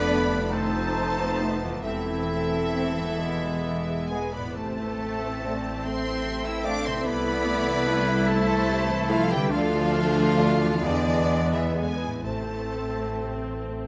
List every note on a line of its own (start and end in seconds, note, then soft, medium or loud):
0.00 1.82 F1 loud
0.00 0.32 F2 medium
0.00 0.36 A3 medium
0.00 0.52 A3 medium
0.00 0.52 B3 loud
0.00 0.49 D4 medium
0.00 0.50 D4 medium
0.00 0.54 D4 loud
0.00 0.45 A4 medium
0.00 0.49 B4 loud
0.00 0.50 D5 loud
0.00 0.52 D5 loud
0.00 0.49 B5 loud
0.09 0.30 D3 medium
0.09 0.25 A3 medium
0.09 0.24 D4 medium
0.31 1.77 F2 medium
0.31 0.52 F3 medium
0.37 3.14 A3 medium
0.42 1.82 D#4 medium
0.46 1.77 A4 medium
0.51 0.72 D#3 medium
0.51 1.83 A3 medium
0.51 1.18 C4 medium
0.51 1.80 D#4 medium
0.51 1.66 D#4 loud
0.51 1.65 A4 loud
0.51 1.83 C5 loud
0.51 1.54 C5 loud
0.51 1.83 A5 loud
0.75 0.96 F3 medium
0.97 1.18 A3 medium
1.17 1.85 B3 medium
1.17 1.40 C4 medium
1.40 1.55 A3 medium
1.40 1.62 A3 medium
1.40 1.55 D#4 medium
1.63 2.98 E2 medium
1.63 1.84 F3 medium
1.69 3.15 C4 medium
1.73 3.08 E4 medium
1.78 4.30 E1 medium
1.78 4.05 E4 loud
1.78 3.19 A4 medium
1.82 2.04 C3 medium
1.82 4.05 E3 medium
1.82 3.20 A3 medium
1.82 3.15 C4 medium
1.82 3.16 C4 medium
1.82 4.10 A4 loud
1.82 4.06 E5 loud
1.82 3.83 E5 loud
2.07 2.29 E3 medium
2.31 2.52 A3 medium
2.53 2.74 E3 medium
2.74 2.97 C3 medium
2.74 2.90 A3 medium
2.74 2.90 C4 medium
2.97 4.50 E2 medium
2.97 3.18 E3 medium
3.04 4.53 B3 medium
3.09 4.45 E4 medium
3.13 4.57 G#4 medium
3.17 3.40 E3 medium
3.17 4.22 G#3 medium
3.17 4.19 B3 medium
3.17 4.35 B3 medium
3.43 3.64 G#3 medium
3.64 3.87 E3 medium
3.87 4.10 G#3 medium
4.09 4.33 E3 medium
4.09 4.33 G#3 medium
4.09 4.27 G#3 medium
4.09 4.27 B3 medium
4.09 4.33 G#4 medium
4.09 4.34 B4 medium
4.09 4.33 G#5 loud
4.32 4.56 G#3 medium
4.32 4.55 B3 medium
4.32 4.56 B4 medium
4.32 4.56 D5 medium
4.32 4.56 B5 medium
4.37 6.99 A2 medium
4.42 8.32 C4 medium
4.46 6.95 E4 medium
4.51 7.06 C4 medium
4.51 6.99 A4 medium
4.55 7.02 A1 medium
4.55 4.77 C3 medium
4.55 5.85 A3 medium
4.55 9.48 A3 medium
4.55 7.02 C4 medium
4.55 5.83 A4 loud
4.55 4.98 C5 medium
4.55 5.86 C5 medium
4.55 5.83 A5 loud
4.80 5.01 E3 medium
5.02 5.23 A3 medium
5.02 5.45 E5 medium
5.22 5.44 E3 medium
5.45 5.66 C3 medium
5.45 5.59 A3 medium
5.45 5.59 C4 medium
5.45 5.86 D5 medium
5.65 5.86 E3 medium
5.84 6.06 A3 medium
5.84 6.45 C4 medium
5.84 6.44 C5 medium
5.84 7.06 C5 medium
5.84 6.47 E5 loud
5.84 6.45 C6 loud
6.06 6.26 E3 medium
6.24 6.45 C3 medium
6.45 6.65 E3 medium
6.45 6.65 E4 medium
6.45 6.65 E5 loud
6.45 6.66 G5 loud
6.45 6.66 E6 loud
6.63 6.78 A3 medium
6.63 6.85 A3 medium
6.63 6.78 C4 medium
6.63 6.85 D4 loud
6.63 6.85 D5 loud
6.63 6.85 F5 loud
6.63 6.85 D6 loud
6.84 9.46 C3 medium
6.84 7.05 E3 medium
6.84 7.05 C4 loud
6.84 7.06 C5 loud
6.84 7.05 E5 loud
6.84 7.06 C6 loud
6.91 10.81 A3 medium
6.96 9.51 E4 medium
7.00 7.23 C3 medium
7.00 9.46 A4 medium
7.04 9.52 C2 loud
7.04 8.28 B3 loud
7.04 9.52 E4 loud
7.04 9.51 E4 loud
7.04 8.28 B4 loud
7.04 8.27 D5 loud
7.04 9.49 E5 loud
7.04 8.26 B5 loud
7.25 7.45 E3 medium
7.45 7.66 A3 medium
7.66 7.86 E3 medium
7.85 8.07 C3 medium
7.85 8.00 A3 loud
7.85 8.00 E4 loud
8.06 8.27 E3 medium
8.27 9.10 A3 loud
8.27 8.49 A3 loud
8.27 9.10 A4 loud
8.27 9.11 C5 loud
8.27 9.10 A5 loud
8.49 8.69 E3 medium
8.69 8.89 C3 loud
8.89 9.10 E3 loud
9.08 9.31 F3 loud
9.08 9.24 A3 loud
9.08 9.31 A3 loud
9.08 9.23 E4 loud
9.08 9.30 F4 loud
9.08 9.31 A4 loud
9.08 9.31 F5 loud
9.30 10.78 D3 loud
9.30 9.52 E3 medium
9.30 9.52 G3 loud
9.30 9.51 G4 loud
9.30 9.52 B4 loud
9.30 9.53 G5 loud
9.38 12.21 D4 medium
9.42 10.83 F4 medium
9.47 9.71 D3 loud
9.47 10.82 D4 loud
9.47 10.81 D4 loud
9.47 10.85 A4 medium
9.51 10.81 D2 loud
9.51 10.81 F3 loud
9.51 10.86 A3 loud
9.51 10.84 F4 loud
9.51 10.82 A4 loud
9.51 9.95 D5 loud
9.51 10.82 F5 loud
9.73 9.95 F3 medium
9.95 10.18 A3 loud
9.95 10.39 C5 loud
10.18 10.40 F3 medium
10.38 10.61 D3 medium
10.38 10.54 A3 loud
10.38 10.54 D4 loud
10.38 11.97 D5 loud
10.61 12.19 E3 medium
10.61 10.84 F3 medium
10.69 12.21 B3 medium
10.74 12.14 E4 medium
10.78 12.26 G#4 medium
10.82 12.25 E2 loud
10.82 11.05 D3 medium
10.82 11.52 D3 loud
10.82 11.93 G#3 loud
10.82 11.90 B3 medium
10.82 12.22 B3 loud
10.82 11.52 D4 loud
10.82 11.53 G#4 loud
10.82 11.53 D5 loud
11.07 11.30 E3 medium
11.30 11.53 G#3 medium
11.51 11.76 E3 medium
11.51 11.77 E3 medium
11.51 11.76 E4 medium
11.51 11.77 G#4 medium
11.51 11.77 E5 loud
11.75 12.00 D3 medium
11.75 12.23 G#3 medium
11.75 11.93 G#3 medium
11.75 11.93 B3 medium
11.75 12.10 G#4 medium
11.75 12.24 B4 medium
11.75 12.25 G#5 loud
12.00 12.24 E3 medium
12.06 13.87 A2 medium
12.11 13.87 C4 soft
12.15 13.87 E4 medium
12.20 13.87 A4 medium
12.24 13.87 A1 medium
12.24 12.48 C3 medium
12.24 13.87 A3 medium
12.24 13.70 A3 medium
12.24 13.87 C4 medium
12.24 13.66 A4 medium
12.24 13.69 C5 medium
12.24 13.87 C5 medium
12.24 13.67 A5 loud
12.49 12.73 E3 medium
12.73 12.97 A3 medium
12.97 13.21 E3 medium
13.20 13.45 C3 medium
13.20 13.38 A3 medium
13.20 13.38 C4 medium
13.45 13.69 E3 medium
13.69 13.87 A3 medium